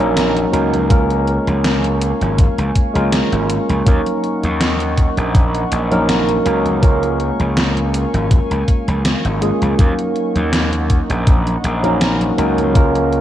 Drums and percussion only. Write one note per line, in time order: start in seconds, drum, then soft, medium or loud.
0.00 closed hi-hat soft
0.00 high conga medium
0.17 snare loud
0.17 closed hi-hat loud
0.17 high conga soft
0.37 closed hi-hat soft
0.37 high conga soft
0.53 closed hi-hat medium
0.74 closed hi-hat soft
0.74 high conga medium
0.90 kick loud
0.90 closed hi-hat loud
0.90 high conga soft
1.10 closed hi-hat soft
1.10 high conga soft
1.27 closed hi-hat soft
1.47 closed hi-hat soft
1.47 high conga medium
1.64 snare loud
1.64 closed hi-hat loud
1.64 high conga soft
1.84 closed hi-hat soft
1.84 high conga soft
2.01 closed hi-hat medium
2.21 closed hi-hat soft
2.21 high conga medium
2.38 kick loud
2.38 closed hi-hat loud
2.38 high conga soft
2.58 closed hi-hat soft
2.58 high conga soft
2.75 kick medium
2.75 closed hi-hat medium
2.95 closed hi-hat soft
2.95 high conga medium
3.13 snare loud
3.13 closed hi-hat loud
3.13 high conga soft
3.33 closed hi-hat soft
3.33 high conga soft
3.50 closed hi-hat medium
3.70 closed hi-hat soft
3.70 high conga medium
3.87 kick loud
3.87 closed hi-hat loud
3.87 high conga soft
4.06 closed hi-hat soft
4.06 high conga soft
4.24 closed hi-hat soft
4.43 closed hi-hat soft
4.43 high conga medium
4.61 snare loud
4.61 closed hi-hat medium
4.61 high conga soft
4.80 closed hi-hat soft
4.80 high conga soft
4.98 kick medium
4.98 closed hi-hat medium
5.17 closed hi-hat soft
5.17 high conga medium
5.35 kick loud
5.35 closed hi-hat medium
5.35 high conga soft
5.55 closed hi-hat soft
5.55 high conga soft
5.72 closed hi-hat medium
5.92 closed hi-hat soft
5.92 high conga medium
6.09 snare loud
6.09 closed hi-hat medium
6.09 high conga soft
6.29 closed hi-hat soft
6.29 high conga soft
6.46 closed hi-hat medium
6.66 closed hi-hat soft
6.66 high conga medium
6.83 kick loud
6.83 closed hi-hat medium
6.83 high conga soft
7.03 closed hi-hat soft
7.03 high conga soft
7.20 closed hi-hat soft
7.40 closed hi-hat soft
7.40 high conga medium
7.57 snare loud
7.57 closed hi-hat medium
7.57 high conga soft
7.77 closed hi-hat soft
7.77 high conga soft
7.94 closed hi-hat medium
8.14 closed hi-hat soft
8.14 high conga medium
8.31 kick loud
8.31 closed hi-hat medium
8.31 high conga soft
8.51 closed hi-hat soft
8.51 high conga soft
8.68 kick medium
8.68 closed hi-hat medium
8.88 closed hi-hat soft
8.88 high conga medium
9.05 snare loud
9.05 closed hi-hat medium
9.05 high conga soft
9.25 closed hi-hat soft
9.25 high conga soft
9.42 closed hi-hat medium
9.62 closed hi-hat soft
9.62 high conga medium
9.79 kick loud
9.79 closed hi-hat medium
9.79 high conga soft
9.99 closed hi-hat soft
9.99 high conga soft
10.16 closed hi-hat soft
10.36 closed hi-hat soft
10.36 high conga medium
10.53 snare loud
10.53 closed hi-hat medium
10.53 high conga soft
10.73 closed hi-hat soft
10.73 high conga soft
10.90 kick medium
10.90 closed hi-hat medium
11.10 closed hi-hat soft
11.10 high conga medium
11.27 kick loud
11.27 closed hi-hat medium
11.27 high conga soft
11.47 closed hi-hat soft
11.47 high conga soft
11.64 closed hi-hat medium
11.84 closed hi-hat soft
11.84 high conga medium
12.01 snare loud
12.01 closed hi-hat medium
12.01 high conga soft
12.21 closed hi-hat soft
12.21 high conga soft
12.38 closed hi-hat medium
12.58 closed hi-hat soft
12.58 high conga medium
12.75 kick loud
12.75 closed hi-hat medium
12.75 high conga soft
12.95 closed hi-hat soft
12.95 high conga soft
13.13 closed hi-hat soft